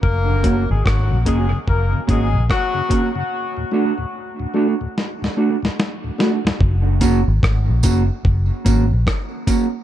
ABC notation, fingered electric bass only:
X:1
M:4/4
L:1/16
Q:"Swing 16ths" 1/4=73
K:F#
V:1 name="Fingered electric bass" clef=bass
F,,,3 G,,, G,,, A,,, z2 F,,, z G,,, A,,, z4 | z16 | F,,,3 G,,, G,,, A,,, F,,, z F,,, z G,,, A,,, z4 |]